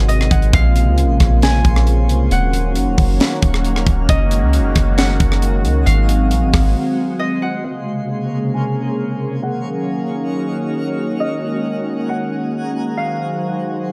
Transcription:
0.00 0.30 G#1 loud
0.00 2.28 C3 medium
0.00 0.52 D#3 medium
0.00 0.52 F#3 medium
0.00 0.51 G#3 medium
0.00 2.28 G#3 medium
0.00 0.50 F#4 medium
0.00 0.52 F#4 medium
0.00 0.52 C5 medium
0.00 0.37 F5 medium
0.08 1.87 D#5 medium
0.08 closed hi-hat medium
0.21 cross-stick medium
0.31 0.53 G#1 loud
0.31 0.60 F#5 medium
0.31 kick loud
0.31 closed hi-hat medium
0.42 closed hi-hat soft
0.53 0.88 A#1 loud
0.53 2.29 C#3 medium
0.53 2.29 A#3 medium
0.53 2.29 F4 medium
0.53 2.29 G#4 medium
0.53 2.30 C5 medium
0.53 2.29 C#5 medium
0.53 2.20 F5 loud
0.53 kick loud
0.53 closed hi-hat medium
0.76 closed hi-hat medium
0.87 1.05 C#2 loud
0.98 closed hi-hat medium
1.03 1.19 A#1 loud
1.20 1.63 A#1 loud
1.20 kick medium
1.20 cross-stick loud
1.20 closed hi-hat medium
1.42 2.93 G#5 medium
1.42 snare loud
1.42 closed hi-hat medium
1.65 2.11 A#1 loud
1.65 kick loud
1.65 closed hi-hat medium
1.76 cross-stick medium
1.87 closed hi-hat medium
2.09 2.30 C2 loud
2.09 closed hi-hat medium
2.31 2.77 D#1 loud
2.31 7.61 D#3 medium
2.31 4.07 F#3 medium
2.31 5.83 A#3 medium
2.31 5.83 C#4 medium
2.31 4.07 C#4 medium
2.31 4.07 F#4 medium
2.31 3.93 F#5 loud
2.31 4.07 F6 medium
2.31 closed hi-hat medium
2.53 closed hi-hat medium
2.75 2.88 F#1 loud
2.75 closed hi-hat medium
2.87 2.97 D#1 loud
2.98 3.19 F#1 loud
2.98 kick medium
2.98 open hi-hat medium
3.20 snare loud
3.20 closed hi-hat medium
3.42 3.85 D#1 loud
3.42 kick loud
3.42 closed hi-hat medium
3.54 cross-stick loud
3.65 closed hi-hat medium
3.76 cross-stick medium
3.87 4.08 D#1 loud
3.87 kick loud
3.87 closed hi-hat medium
4.09 4.44 F#1 loud
4.09 7.61 G#3 medium
4.09 5.85 A#3 medium
4.09 7.61 F#4 medium
4.09 5.85 G#4 medium
4.09 5.85 D#5 medium
4.09 5.87 D#5 loud
4.09 kick loud
4.09 closed hi-hat medium
4.31 closed hi-hat medium
4.42 4.60 C#2 loud
4.53 closed hi-hat medium
4.59 4.75 F#1 loud
4.75 5.18 F#1 loud
4.75 kick medium
4.75 cross-stick loud
4.75 closed hi-hat medium
4.98 5.92 F#5 loud
4.98 snare loud
4.98 closed hi-hat medium
5.20 5.66 F#1 loud
5.20 kick loud
5.20 closed hi-hat medium
5.32 cross-stick medium
5.42 closed hi-hat medium
5.64 5.86 C#2 loud
5.64 closed hi-hat medium
5.86 6.33 G#1 loud
5.86 7.63 F#3 medium
5.86 7.63 G#3 medium
5.86 7.63 C4 medium
5.86 7.63 F#4 medium
5.86 7.63 C5 medium
5.86 7.48 F5 loud
5.86 closed hi-hat medium
6.09 closed hi-hat medium
6.31 6.44 A#1 loud
6.31 closed hi-hat medium
6.42 6.53 G#1 loud
6.53 6.75 G#1 loud
6.53 kick medium
6.53 cross-stick loud
6.53 open hi-hat medium
7.19 8.98 D#5 medium
7.42 7.71 F#5 medium
7.64 9.41 C3 medium
7.64 9.41 C#3 medium
7.64 9.41 G#3 medium
7.64 12.94 A#3 medium
7.64 9.41 A#3 medium
7.64 11.17 G#4 medium
7.64 9.41 G#4 medium
7.64 9.41 C5 medium
7.64 11.17 C#5 medium
7.64 9.31 F5 loud
8.54 10.04 G#5 medium
9.42 12.94 D#3 medium
9.42 11.18 F#3 medium
9.42 12.94 C#4 medium
9.42 12.94 D#4 medium
9.42 11.18 F#4 medium
9.42 11.03 F#5 loud
9.42 11.18 F6 medium
11.20 13.92 G#3 medium
11.20 13.92 F#4 medium
11.20 12.96 G#4 medium
11.20 12.96 A#4 medium
11.20 12.98 D#5 medium
11.20 12.96 F#5 medium
12.09 13.03 F#5 medium
12.97 13.92 D#3 medium
12.97 13.92 F#3 medium
12.97 13.92 F#4 medium
12.97 13.92 C5 medium
12.97 13.92 F5 medium
12.97 13.92 G#5 medium

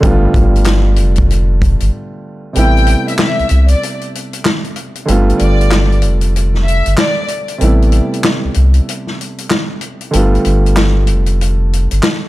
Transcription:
0.00 0.27 G1 loud
0.00 2.50 D3 medium
0.00 2.51 G3 medium
0.00 2.52 A3 medium
0.00 kick loud
0.00 closed hi-hat loud
0.05 2.53 B3 medium
0.05 2.53 F4 medium
0.34 1.00 G1 loud
0.34 kick medium
0.34 closed hi-hat medium
0.56 closed hi-hat soft
0.64 snare loud
0.64 clap medium
0.64 closed hi-hat medium
0.96 1.77 F1 medium
0.96 closed hi-hat medium
1.16 kick medium
1.16 closed hi-hat medium
1.31 closed hi-hat medium
1.62 kick medium
1.62 closed hi-hat medium
1.80 1.90 G1 medium
1.80 closed hi-hat medium
2.53 2.95 A1 loud
2.53 5.03 C3 medium
2.53 5.04 G3 medium
2.53 5.04 A3 medium
2.53 3.04 G5 loud
2.53 closed hi-hat loud
2.57 5.05 B3 medium
2.57 5.06 E4 medium
2.77 closed hi-hat soft
2.87 closed hi-hat medium
3.07 3.17 E5 medium
3.07 closed hi-hat medium
3.18 3.67 E5 medium
3.18 snare loud
3.18 clap medium
3.39 3.44 C2 soft
3.39 closed hi-hat soft
3.49 3.75 C2 medium
3.49 closed hi-hat medium
3.68 3.98 D5 medium
3.68 closed hi-hat medium
3.83 closed hi-hat medium
4.01 closed hi-hat soft
4.15 closed hi-hat medium
4.33 closed hi-hat medium
4.45 snare loud
4.45 clap medium
4.64 closed hi-hat soft
4.76 closed hi-hat medium
4.95 closed hi-hat soft
5.05 5.33 G1 loud
5.05 7.56 D3 medium
5.05 7.56 G3 medium
5.05 7.57 A3 medium
5.05 closed hi-hat loud
5.10 7.58 B3 medium
5.10 7.58 F4 medium
5.30 closed hi-hat soft
5.39 6.05 G1 loud
5.39 5.88 D5 medium
5.39 closed hi-hat medium
5.61 closed hi-hat soft
5.71 snare loud
5.71 clap medium
5.92 closed hi-hat soft
6.02 6.82 F1 medium
6.02 closed hi-hat medium
6.21 closed hi-hat medium
6.36 closed hi-hat medium
6.54 snare soft
6.65 6.94 E5 medium
6.65 closed hi-hat medium
6.86 6.96 G1 medium
6.86 closed hi-hat medium
6.98 7.26 D5 medium
6.98 snare loud
6.98 clap medium
7.28 closed hi-hat medium
7.48 closed hi-hat medium
7.58 8.01 A1 loud
7.58 10.08 C3 medium
7.58 10.09 G3 medium
7.58 10.10 A3 medium
7.58 closed hi-hat loud
7.62 10.10 B3 medium
7.62 10.11 E4 medium
7.82 closed hi-hat soft
7.92 closed hi-hat medium
8.14 closed hi-hat soft
8.24 snare loud
8.24 clap medium
8.45 8.49 C2 soft
8.54 8.80 C2 loud
8.54 closed hi-hat medium
8.74 closed hi-hat medium
8.89 closed hi-hat medium
9.07 snare soft
9.21 closed hi-hat medium
9.38 closed hi-hat medium
9.50 snare loud
9.50 clap medium
9.81 closed hi-hat medium
10.01 closed hi-hat soft
10.11 10.38 G1 loud
10.11 12.29 D3 medium
10.11 12.29 G3 medium
10.11 12.29 A3 medium
10.11 closed hi-hat loud
10.15 12.29 B3 medium
10.15 12.29 F4 medium
10.35 closed hi-hat soft
10.45 11.11 G1 loud
10.45 closed hi-hat medium
10.66 closed hi-hat soft
10.77 snare loud
10.77 clap medium
11.07 11.88 F1 loud
11.07 closed hi-hat medium
11.26 closed hi-hat medium
11.41 closed hi-hat medium
11.73 closed hi-hat medium
11.91 12.01 G1 medium
11.91 closed hi-hat medium
12.03 snare loud
12.03 clap medium

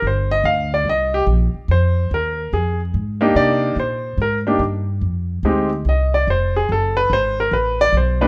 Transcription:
0.02 0.43 G1 medium
0.07 0.32 C5 medium
0.31 0.45 D#5 medium
0.44 0.84 D2 medium
0.44 0.72 F5 medium
0.74 0.87 D5 medium
0.85 1.26 C2 medium
0.89 1.14 D#5 medium
1.14 1.22 G4 medium
1.27 1.53 A#1 medium
1.54 muted upright bass stroke soft
1.68 2.09 F2 medium
1.68 2.09 C5 medium
2.11 2.51 D#2 medium
2.11 2.51 A#4 medium
2.53 2.93 F2 medium
2.53 2.80 G#4 medium
2.94 3.34 G#2 medium
3.21 3.74 A#3 medium
3.21 3.74 D4 medium
3.21 3.74 D#4 medium
3.21 3.74 G4 medium
3.35 3.76 C3 medium
3.35 3.75 D5 medium
3.76 4.17 A#2 medium
3.76 4.17 C5 medium
4.17 4.58 G#2 medium
4.22 4.37 A#4 medium
4.47 4.59 A#3 medium
4.47 4.59 D4 medium
4.47 4.60 D#4 medium
4.47 4.60 G4 medium
4.59 5.00 G2 medium
5.01 5.42 F2 medium
5.43 5.83 D2 medium
5.43 5.69 G#3 medium
5.43 5.69 C4 medium
5.43 5.69 D#4 medium
5.43 5.69 G4 medium
5.85 6.25 C2 medium
5.85 6.13 D#5 medium
6.14 6.27 D5 medium
6.27 6.67 F1 medium
6.27 6.55 C5 medium
6.56 6.69 G#4 medium
6.69 7.09 F#1 medium
6.69 6.97 A4 medium
6.97 7.10 B4 medium
7.10 7.50 G#1 medium
7.10 7.38 C5 medium
7.40 7.52 A#4 medium
7.51 7.92 A1 medium
7.51 7.79 B4 medium
7.81 7.94 D5 medium
7.92 8.28 B1 medium
7.97 8.21 C5 medium
8.21 8.28 A#3 medium
8.21 8.28 D4 medium
8.21 8.28 D#4 medium
8.21 8.28 G4 medium
8.21 8.28 B4 medium

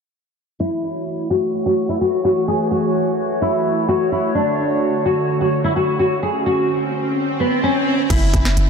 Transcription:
0.60 4.31 E3 medium
0.60 8.06 A3 medium
0.60 1.26 E4 loud
0.60 8.06 F#4 medium
0.60 6.19 C#5 medium
1.30 1.63 F#4 medium
1.66 1.85 F#4 medium
1.89 1.99 E4 medium
2.01 2.20 F#4 medium
2.25 2.44 F#4 medium
2.48 2.67 G#4 medium
2.71 3.37 F#4 medium
3.42 3.86 E4 medium
3.88 4.08 F#4 medium
4.12 4.31 E4 medium
4.35 8.06 D3 medium
4.35 5.01 D4 medium
5.06 5.39 F#4 medium
5.41 5.60 F#4 medium
5.64 5.74 E4 medium
5.76 5.95 F#4 medium
5.99 6.19 F#4 medium
6.23 8.08 C#4 medium
6.23 6.42 G#4 medium
6.23 swell medium
6.46 7.36 F#4 medium
7.40 7.59 B3 medium
7.63 8.07 C#4 loud
8.10 8.33 F#1 loud
8.10 8.70 E4 loud
8.10 kick loud
8.10 closed hi-hat medium
8.10 crash medium
8.34 8.56 F#1 loud
8.34 kick medium
8.34 closed hi-hat medium
8.45 snare medium
8.57 8.70 F#1 loud
8.57 closed hi-hat medium

